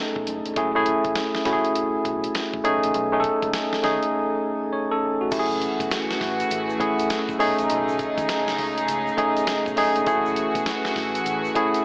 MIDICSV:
0, 0, Header, 1, 6, 480
1, 0, Start_track
1, 0, Tempo, 594059
1, 457, Time_signature, 4, 2, 24, 8
1, 9573, End_track
2, 0, Start_track
2, 0, Title_t, "Tine electric piano"
2, 0, Program_c, 0, 4
2, 0, Control_c, 0, 64, 127
2, 0, Note_on_c, 0, 57, 83
2, 0, Note_on_c, 0, 61, 75
2, 0, Note_on_c, 0, 63, 77
2, 0, Note_on_c, 0, 68, 67
2, 0, Note_on_c, 0, 69, 90
2, 453, Note_off_c, 0, 57, 0
2, 453, Note_on_c, 0, 57, 86
2, 456, Note_off_c, 0, 61, 0
2, 456, Note_on_c, 0, 61, 74
2, 460, Note_on_c, 0, 64, 76
2, 463, Note_off_c, 0, 68, 0
2, 463, Note_on_c, 0, 68, 87
2, 468, Control_c, 0, 64, 0
2, 470, Note_off_c, 0, 63, 0
2, 473, Note_off_c, 0, 69, 0
2, 570, Note_off_c, 0, 57, 0
2, 572, Note_off_c, 0, 61, 0
2, 574, Note_off_c, 0, 64, 0
2, 575, Note_off_c, 0, 68, 0
2, 585, Control_c, 0, 64, 127
2, 604, Note_on_c, 0, 57, 82
2, 608, Note_on_c, 0, 61, 72
2, 611, Note_on_c, 0, 64, 74
2, 614, Note_on_c, 0, 68, 92
2, 1058, Note_off_c, 0, 57, 0
2, 1060, Note_off_c, 0, 61, 0
2, 1061, Note_off_c, 0, 64, 0
2, 1063, Note_off_c, 0, 68, 0
2, 1170, Note_on_c, 0, 57, 84
2, 1175, Note_on_c, 0, 61, 76
2, 1178, Note_on_c, 0, 64, 76
2, 1181, Note_on_c, 0, 66, 71
2, 1234, Note_on_c, 0, 68, 87
2, 1245, Note_off_c, 0, 66, 0
2, 1909, Note_off_c, 0, 57, 0
2, 1911, Note_off_c, 0, 61, 0
2, 1912, Note_off_c, 0, 64, 0
2, 1941, Note_off_c, 0, 68, 0
2, 2131, Note_on_c, 0, 57, 88
2, 2135, Note_on_c, 0, 61, 85
2, 2137, Note_on_c, 0, 63, 82
2, 2140, Note_on_c, 0, 68, 102
2, 2148, Control_c, 0, 64, 0
2, 2271, Control_c, 0, 64, 127
2, 2435, Note_off_c, 0, 57, 0
2, 2436, Note_off_c, 0, 61, 0
2, 2438, Note_off_c, 0, 63, 0
2, 2439, Note_off_c, 0, 68, 0
2, 2522, Note_on_c, 0, 57, 81
2, 2526, Note_on_c, 0, 61, 76
2, 2529, Note_on_c, 0, 63, 72
2, 2531, Note_on_c, 0, 68, 72
2, 2569, Note_off_c, 0, 68, 0
2, 2585, Note_on_c, 0, 69, 93
2, 2977, Note_off_c, 0, 57, 0
2, 2979, Note_off_c, 0, 61, 0
2, 2980, Note_off_c, 0, 63, 0
2, 3008, Note_off_c, 0, 69, 0
2, 3095, Note_on_c, 0, 57, 75
2, 3098, Note_on_c, 0, 61, 71
2, 3102, Note_on_c, 0, 63, 76
2, 3104, Note_on_c, 0, 68, 90
2, 3816, Note_off_c, 0, 57, 0
2, 3818, Note_off_c, 0, 61, 0
2, 3819, Note_off_c, 0, 63, 0
2, 3819, Note_on_c, 0, 73, 67
2, 3821, Note_off_c, 0, 68, 0
2, 3962, Note_off_c, 0, 73, 0
2, 3971, Note_on_c, 0, 69, 73
2, 3975, Note_on_c, 0, 61, 61
2, 4198, Note_off_c, 0, 69, 0
2, 4200, Note_off_c, 0, 61, 0
2, 4210, Note_on_c, 0, 66, 58
2, 4215, Note_on_c, 0, 57, 48
2, 4285, Note_off_c, 0, 57, 0
2, 4294, Note_on_c, 0, 57, 86
2, 4298, Note_on_c, 0, 61, 76
2, 4301, Note_on_c, 0, 64, 71
2, 4303, Note_on_c, 0, 67, 72
2, 4308, Control_c, 0, 64, 0
2, 4357, Note_on_c, 0, 68, 91
2, 4366, Note_off_c, 0, 67, 0
2, 4437, Note_off_c, 0, 66, 0
2, 4456, Control_c, 0, 64, 127
2, 5031, Note_off_c, 0, 57, 0
2, 5033, Note_off_c, 0, 61, 0
2, 5034, Note_off_c, 0, 64, 0
2, 5062, Note_off_c, 0, 68, 0
2, 5491, Note_on_c, 0, 57, 80
2, 5494, Note_on_c, 0, 61, 72
2, 5496, Note_on_c, 0, 64, 68
2, 5501, Note_on_c, 0, 68, 87
2, 5889, Note_off_c, 0, 57, 0
2, 5891, Note_off_c, 0, 61, 0
2, 5892, Note_off_c, 0, 64, 0
2, 5894, Note_off_c, 0, 68, 0
2, 5970, Note_on_c, 0, 57, 91
2, 5973, Note_on_c, 0, 61, 80
2, 5977, Note_on_c, 0, 63, 84
2, 5980, Note_on_c, 0, 68, 98
2, 5988, Control_c, 0, 64, 0
2, 6119, Control_c, 0, 64, 127
2, 6754, Note_off_c, 0, 57, 0
2, 6755, Note_off_c, 0, 61, 0
2, 6758, Note_off_c, 0, 63, 0
2, 6759, Note_off_c, 0, 68, 0
2, 7410, Note_on_c, 0, 57, 78
2, 7413, Note_on_c, 0, 61, 75
2, 7417, Note_on_c, 0, 63, 71
2, 7420, Note_on_c, 0, 68, 92
2, 7809, Note_off_c, 0, 57, 0
2, 7811, Note_off_c, 0, 61, 0
2, 7813, Note_off_c, 0, 63, 0
2, 7814, Note_off_c, 0, 68, 0
2, 7891, Note_on_c, 0, 57, 76
2, 7894, Note_on_c, 0, 61, 72
2, 7897, Note_on_c, 0, 63, 75
2, 7901, Note_on_c, 0, 68, 91
2, 8092, Note_off_c, 0, 57, 0
2, 8093, Note_off_c, 0, 61, 0
2, 8095, Note_off_c, 0, 63, 0
2, 8097, Note_off_c, 0, 68, 0
2, 8132, Note_on_c, 0, 57, 86
2, 8134, Note_on_c, 0, 61, 76
2, 8139, Note_on_c, 0, 64, 77
2, 8141, Note_on_c, 0, 68, 94
2, 8149, Control_c, 0, 64, 0
2, 8307, Control_c, 0, 64, 127
2, 8870, Note_off_c, 0, 57, 0
2, 8870, Note_off_c, 0, 61, 0
2, 8873, Note_off_c, 0, 64, 0
2, 8874, Note_off_c, 0, 68, 0
2, 9329, Note_on_c, 0, 57, 82
2, 9335, Note_on_c, 0, 61, 80
2, 9337, Note_on_c, 0, 64, 78
2, 9341, Note_on_c, 0, 68, 96
2, 9573, Note_off_c, 0, 57, 0
2, 9573, Note_off_c, 0, 61, 0
2, 9573, Note_off_c, 0, 64, 0
2, 9573, Note_off_c, 0, 68, 0
2, 9573, End_track
3, 0, Start_track
3, 0, Title_t, "String section"
3, 0, Program_c, 1, 48
3, 4299, Note_on_c, 1, 52, 73
3, 4299, Note_on_c, 1, 57, 65
3, 4301, Note_on_c, 1, 66, 75
3, 4301, Note_on_c, 1, 68, 62
3, 5961, Note_off_c, 1, 52, 0
3, 5962, Note_off_c, 1, 66, 0
3, 5976, Note_on_c, 1, 63, 90
3, 5978, Note_on_c, 1, 49, 76
3, 8106, Note_off_c, 1, 57, 0
3, 8115, Note_off_c, 1, 63, 0
3, 8116, Note_off_c, 1, 49, 0
3, 8137, Note_on_c, 1, 57, 69
3, 8137, Note_on_c, 1, 66, 85
3, 8138, Note_on_c, 1, 52, 74
3, 9573, Note_off_c, 1, 52, 0
3, 9573, Note_off_c, 1, 57, 0
3, 9573, Note_off_c, 1, 66, 0
3, 9573, Note_off_c, 1, 68, 0
3, 9573, End_track
4, 0, Start_track
4, 0, Title_t, "Fingered electric bass"
4, 0, Program_c, 2, 33
4, 130, Note_on_c, 2, 35, 86
4, 193, Note_off_c, 2, 35, 0
4, 220, Note_on_c, 2, 30, 93
4, 327, Note_off_c, 2, 30, 0
4, 370, Note_on_c, 2, 28, 84
4, 433, Note_off_c, 2, 28, 0
4, 458, Note_on_c, 2, 30, 105
4, 736, Note_off_c, 2, 30, 0
4, 846, Note_on_c, 2, 33, 84
4, 910, Note_off_c, 2, 33, 0
4, 1176, Note_on_c, 2, 37, 84
4, 1284, Note_off_c, 2, 37, 0
4, 1656, Note_on_c, 2, 35, 90
4, 1827, Note_off_c, 2, 35, 0
4, 2050, Note_on_c, 2, 33, 88
4, 2112, Note_off_c, 2, 33, 0
4, 2140, Note_on_c, 2, 35, 89
4, 2246, Note_off_c, 2, 35, 0
4, 2293, Note_on_c, 2, 33, 83
4, 2354, Note_off_c, 2, 33, 0
4, 2381, Note_on_c, 2, 35, 115
4, 2657, Note_off_c, 2, 35, 0
4, 2768, Note_on_c, 2, 37, 90
4, 2831, Note_off_c, 2, 37, 0
4, 3099, Note_on_c, 2, 39, 86
4, 3206, Note_off_c, 2, 39, 0
4, 4299, Note_on_c, 2, 30, 103
4, 4576, Note_off_c, 2, 30, 0
4, 4689, Note_on_c, 2, 35, 83
4, 4752, Note_off_c, 2, 35, 0
4, 5020, Note_on_c, 2, 33, 89
4, 5189, Note_off_c, 2, 33, 0
4, 5260, Note_on_c, 2, 33, 110
4, 5429, Note_off_c, 2, 33, 0
4, 5890, Note_on_c, 2, 30, 93
4, 5952, Note_off_c, 2, 30, 0
4, 5979, Note_on_c, 2, 35, 96
4, 6086, Note_off_c, 2, 35, 0
4, 6129, Note_on_c, 2, 33, 86
4, 6192, Note_off_c, 2, 33, 0
4, 6219, Note_on_c, 2, 35, 94
4, 6496, Note_off_c, 2, 35, 0
4, 6608, Note_on_c, 2, 39, 89
4, 6671, Note_off_c, 2, 39, 0
4, 6938, Note_on_c, 2, 37, 97
4, 7108, Note_off_c, 2, 37, 0
4, 7179, Note_on_c, 2, 37, 90
4, 7349, Note_off_c, 2, 37, 0
4, 7807, Note_on_c, 2, 35, 89
4, 7870, Note_off_c, 2, 35, 0
4, 7899, Note_on_c, 2, 30, 94
4, 8006, Note_off_c, 2, 30, 0
4, 8051, Note_on_c, 2, 28, 91
4, 8113, Note_off_c, 2, 28, 0
4, 8137, Note_on_c, 2, 30, 109
4, 8415, Note_off_c, 2, 30, 0
4, 8527, Note_on_c, 2, 35, 92
4, 8591, Note_off_c, 2, 35, 0
4, 8857, Note_on_c, 2, 33, 90
4, 9027, Note_off_c, 2, 33, 0
4, 9100, Note_on_c, 2, 33, 104
4, 9270, Note_off_c, 2, 33, 0
4, 9573, End_track
5, 0, Start_track
5, 0, Title_t, "Muted fingered electric bass strokes"
5, 1091, Note_on_c, 9, 29, 45
5, 1172, Note_off_c, 9, 29, 0
5, 3012, Note_on_c, 9, 29, 48
5, 3092, Note_off_c, 9, 29, 0
5, 9573, End_track
6, 0, Start_track
6, 0, Title_t, "Drums"
6, 129, Note_on_c, 9, 36, 88
6, 210, Note_off_c, 9, 36, 0
6, 218, Note_on_c, 9, 42, 85
6, 299, Note_off_c, 9, 42, 0
6, 368, Note_on_c, 9, 42, 49
6, 449, Note_off_c, 9, 42, 0
6, 455, Note_on_c, 9, 42, 67
6, 456, Note_on_c, 9, 36, 108
6, 536, Note_off_c, 9, 42, 0
6, 537, Note_off_c, 9, 36, 0
6, 694, Note_on_c, 9, 42, 67
6, 774, Note_off_c, 9, 42, 0
6, 845, Note_on_c, 9, 36, 107
6, 845, Note_on_c, 9, 42, 57
6, 926, Note_off_c, 9, 36, 0
6, 926, Note_off_c, 9, 42, 0
6, 933, Note_on_c, 9, 38, 108
6, 935, Note_on_c, 9, 42, 62
6, 1014, Note_off_c, 9, 38, 0
6, 1016, Note_off_c, 9, 42, 0
6, 1088, Note_on_c, 9, 38, 66
6, 1169, Note_off_c, 9, 38, 0
6, 1174, Note_on_c, 9, 42, 61
6, 1175, Note_on_c, 9, 36, 91
6, 1175, Note_on_c, 9, 38, 60
6, 1255, Note_off_c, 9, 42, 0
6, 1256, Note_off_c, 9, 36, 0
6, 1256, Note_off_c, 9, 38, 0
6, 1330, Note_on_c, 9, 42, 53
6, 1411, Note_off_c, 9, 42, 0
6, 1418, Note_on_c, 9, 42, 67
6, 1498, Note_off_c, 9, 42, 0
6, 1656, Note_on_c, 9, 36, 97
6, 1658, Note_on_c, 9, 42, 80
6, 1737, Note_off_c, 9, 36, 0
6, 1739, Note_off_c, 9, 42, 0
6, 1808, Note_on_c, 9, 42, 45
6, 1889, Note_off_c, 9, 42, 0
6, 1897, Note_on_c, 9, 42, 72
6, 1899, Note_on_c, 9, 38, 120
6, 1978, Note_off_c, 9, 42, 0
6, 1980, Note_off_c, 9, 38, 0
6, 2049, Note_on_c, 9, 36, 94
6, 2130, Note_off_c, 9, 36, 0
6, 2139, Note_on_c, 9, 42, 81
6, 2219, Note_off_c, 9, 42, 0
6, 2290, Note_on_c, 9, 42, 47
6, 2371, Note_off_c, 9, 42, 0
6, 2378, Note_on_c, 9, 42, 66
6, 2459, Note_off_c, 9, 42, 0
6, 2617, Note_on_c, 9, 42, 74
6, 2618, Note_on_c, 9, 36, 98
6, 2698, Note_off_c, 9, 42, 0
6, 2699, Note_off_c, 9, 36, 0
6, 2767, Note_on_c, 9, 36, 95
6, 2770, Note_on_c, 9, 42, 57
6, 2848, Note_off_c, 9, 36, 0
6, 2850, Note_off_c, 9, 42, 0
6, 2856, Note_on_c, 9, 38, 115
6, 2858, Note_on_c, 9, 42, 67
6, 2937, Note_off_c, 9, 38, 0
6, 2939, Note_off_c, 9, 42, 0
6, 3012, Note_on_c, 9, 38, 64
6, 3093, Note_off_c, 9, 38, 0
6, 3100, Note_on_c, 9, 42, 58
6, 3101, Note_on_c, 9, 38, 60
6, 3180, Note_off_c, 9, 42, 0
6, 3181, Note_off_c, 9, 38, 0
6, 3253, Note_on_c, 9, 42, 50
6, 3334, Note_off_c, 9, 42, 0
6, 4296, Note_on_c, 9, 82, 74
6, 4297, Note_on_c, 9, 42, 72
6, 4297, Note_on_c, 9, 49, 92
6, 4298, Note_on_c, 9, 36, 120
6, 4377, Note_off_c, 9, 42, 0
6, 4377, Note_off_c, 9, 49, 0
6, 4377, Note_off_c, 9, 82, 0
6, 4379, Note_off_c, 9, 36, 0
6, 4449, Note_on_c, 9, 82, 48
6, 4530, Note_off_c, 9, 82, 0
6, 4537, Note_on_c, 9, 42, 68
6, 4537, Note_on_c, 9, 82, 54
6, 4618, Note_off_c, 9, 42, 0
6, 4618, Note_off_c, 9, 82, 0
6, 4687, Note_on_c, 9, 36, 105
6, 4690, Note_on_c, 9, 82, 46
6, 4691, Note_on_c, 9, 42, 59
6, 4768, Note_off_c, 9, 36, 0
6, 4771, Note_off_c, 9, 42, 0
6, 4771, Note_off_c, 9, 82, 0
6, 4776, Note_on_c, 9, 82, 77
6, 4779, Note_on_c, 9, 38, 115
6, 4781, Note_on_c, 9, 42, 64
6, 4857, Note_off_c, 9, 82, 0
6, 4860, Note_off_c, 9, 38, 0
6, 4862, Note_off_c, 9, 42, 0
6, 4932, Note_on_c, 9, 82, 47
6, 4933, Note_on_c, 9, 38, 64
6, 5013, Note_off_c, 9, 82, 0
6, 5014, Note_off_c, 9, 38, 0
6, 5017, Note_on_c, 9, 36, 83
6, 5018, Note_on_c, 9, 46, 53
6, 5019, Note_on_c, 9, 38, 64
6, 5098, Note_off_c, 9, 36, 0
6, 5099, Note_off_c, 9, 46, 0
6, 5100, Note_off_c, 9, 38, 0
6, 5170, Note_on_c, 9, 82, 49
6, 5171, Note_on_c, 9, 42, 53
6, 5250, Note_off_c, 9, 82, 0
6, 5252, Note_off_c, 9, 42, 0
6, 5258, Note_on_c, 9, 82, 74
6, 5261, Note_on_c, 9, 42, 70
6, 5339, Note_off_c, 9, 82, 0
6, 5342, Note_off_c, 9, 42, 0
6, 5411, Note_on_c, 9, 82, 48
6, 5491, Note_off_c, 9, 82, 0
6, 5497, Note_on_c, 9, 36, 91
6, 5501, Note_on_c, 9, 42, 83
6, 5578, Note_off_c, 9, 36, 0
6, 5581, Note_off_c, 9, 42, 0
6, 5648, Note_on_c, 9, 82, 53
6, 5651, Note_on_c, 9, 42, 48
6, 5729, Note_off_c, 9, 82, 0
6, 5732, Note_off_c, 9, 42, 0
6, 5737, Note_on_c, 9, 42, 75
6, 5738, Note_on_c, 9, 82, 80
6, 5740, Note_on_c, 9, 38, 116
6, 5818, Note_off_c, 9, 42, 0
6, 5819, Note_off_c, 9, 82, 0
6, 5821, Note_off_c, 9, 38, 0
6, 5889, Note_on_c, 9, 36, 91
6, 5892, Note_on_c, 9, 82, 55
6, 5970, Note_off_c, 9, 36, 0
6, 5973, Note_off_c, 9, 82, 0
6, 5980, Note_on_c, 9, 46, 89
6, 6061, Note_off_c, 9, 46, 0
6, 6128, Note_on_c, 9, 42, 49
6, 6133, Note_on_c, 9, 82, 52
6, 6209, Note_off_c, 9, 42, 0
6, 6214, Note_off_c, 9, 82, 0
6, 6219, Note_on_c, 9, 42, 68
6, 6220, Note_on_c, 9, 82, 76
6, 6300, Note_off_c, 9, 42, 0
6, 6301, Note_off_c, 9, 82, 0
6, 6371, Note_on_c, 9, 82, 50
6, 6451, Note_off_c, 9, 82, 0
6, 6456, Note_on_c, 9, 82, 52
6, 6457, Note_on_c, 9, 42, 69
6, 6458, Note_on_c, 9, 36, 105
6, 6537, Note_off_c, 9, 82, 0
6, 6538, Note_off_c, 9, 36, 0
6, 6538, Note_off_c, 9, 42, 0
6, 6607, Note_on_c, 9, 36, 109
6, 6610, Note_on_c, 9, 42, 55
6, 6610, Note_on_c, 9, 82, 52
6, 6687, Note_off_c, 9, 36, 0
6, 6690, Note_off_c, 9, 42, 0
6, 6691, Note_off_c, 9, 82, 0
6, 6697, Note_on_c, 9, 38, 127
6, 6698, Note_on_c, 9, 82, 81
6, 6699, Note_on_c, 9, 42, 70
6, 6778, Note_off_c, 9, 38, 0
6, 6778, Note_off_c, 9, 82, 0
6, 6780, Note_off_c, 9, 42, 0
6, 6851, Note_on_c, 9, 38, 68
6, 6852, Note_on_c, 9, 82, 45
6, 6932, Note_off_c, 9, 38, 0
6, 6933, Note_off_c, 9, 82, 0
6, 6936, Note_on_c, 9, 46, 59
6, 7016, Note_off_c, 9, 46, 0
6, 7089, Note_on_c, 9, 82, 46
6, 7091, Note_on_c, 9, 42, 57
6, 7169, Note_off_c, 9, 82, 0
6, 7172, Note_off_c, 9, 42, 0
6, 7177, Note_on_c, 9, 82, 74
6, 7178, Note_on_c, 9, 42, 69
6, 7258, Note_off_c, 9, 82, 0
6, 7259, Note_off_c, 9, 42, 0
6, 7331, Note_on_c, 9, 82, 49
6, 7412, Note_off_c, 9, 82, 0
6, 7416, Note_on_c, 9, 36, 99
6, 7419, Note_on_c, 9, 42, 84
6, 7496, Note_off_c, 9, 36, 0
6, 7499, Note_off_c, 9, 42, 0
6, 7568, Note_on_c, 9, 42, 45
6, 7573, Note_on_c, 9, 82, 51
6, 7649, Note_off_c, 9, 42, 0
6, 7652, Note_on_c, 9, 42, 77
6, 7654, Note_off_c, 9, 82, 0
6, 7654, Note_on_c, 9, 38, 119
6, 7659, Note_on_c, 9, 82, 81
6, 7733, Note_off_c, 9, 42, 0
6, 7735, Note_off_c, 9, 38, 0
6, 7740, Note_off_c, 9, 82, 0
6, 7807, Note_on_c, 9, 36, 88
6, 7813, Note_on_c, 9, 82, 55
6, 7888, Note_off_c, 9, 36, 0
6, 7894, Note_off_c, 9, 82, 0
6, 7894, Note_on_c, 9, 46, 90
6, 7975, Note_off_c, 9, 46, 0
6, 8045, Note_on_c, 9, 42, 53
6, 8051, Note_on_c, 9, 82, 49
6, 8125, Note_off_c, 9, 42, 0
6, 8132, Note_off_c, 9, 82, 0
6, 8132, Note_on_c, 9, 42, 69
6, 8135, Note_on_c, 9, 36, 122
6, 8138, Note_on_c, 9, 82, 74
6, 8213, Note_off_c, 9, 42, 0
6, 8216, Note_off_c, 9, 36, 0
6, 8219, Note_off_c, 9, 82, 0
6, 8287, Note_on_c, 9, 82, 48
6, 8368, Note_off_c, 9, 82, 0
6, 8373, Note_on_c, 9, 42, 72
6, 8375, Note_on_c, 9, 82, 52
6, 8454, Note_off_c, 9, 42, 0
6, 8456, Note_off_c, 9, 82, 0
6, 8525, Note_on_c, 9, 36, 109
6, 8526, Note_on_c, 9, 42, 59
6, 8529, Note_on_c, 9, 82, 52
6, 8606, Note_off_c, 9, 36, 0
6, 8607, Note_off_c, 9, 42, 0
6, 8610, Note_off_c, 9, 82, 0
6, 8615, Note_on_c, 9, 38, 113
6, 8617, Note_on_c, 9, 42, 70
6, 8618, Note_on_c, 9, 82, 76
6, 8696, Note_off_c, 9, 38, 0
6, 8698, Note_off_c, 9, 42, 0
6, 8699, Note_off_c, 9, 82, 0
6, 8766, Note_on_c, 9, 38, 65
6, 8774, Note_on_c, 9, 82, 46
6, 8847, Note_off_c, 9, 38, 0
6, 8855, Note_off_c, 9, 82, 0
6, 8855, Note_on_c, 9, 46, 56
6, 8856, Note_on_c, 9, 36, 83
6, 8856, Note_on_c, 9, 38, 62
6, 8936, Note_off_c, 9, 36, 0
6, 8936, Note_off_c, 9, 46, 0
6, 8937, Note_off_c, 9, 38, 0
6, 9010, Note_on_c, 9, 42, 53
6, 9010, Note_on_c, 9, 82, 48
6, 9090, Note_off_c, 9, 42, 0
6, 9091, Note_off_c, 9, 82, 0
6, 9097, Note_on_c, 9, 82, 74
6, 9098, Note_on_c, 9, 42, 72
6, 9178, Note_off_c, 9, 82, 0
6, 9179, Note_off_c, 9, 42, 0
6, 9249, Note_on_c, 9, 82, 52
6, 9330, Note_off_c, 9, 82, 0
6, 9336, Note_on_c, 9, 36, 99
6, 9339, Note_on_c, 9, 42, 86
6, 9417, Note_off_c, 9, 36, 0
6, 9420, Note_off_c, 9, 42, 0
6, 9489, Note_on_c, 9, 42, 48
6, 9490, Note_on_c, 9, 82, 57
6, 9569, Note_off_c, 9, 42, 0
6, 9571, Note_off_c, 9, 82, 0
6, 9573, End_track
0, 0, End_of_file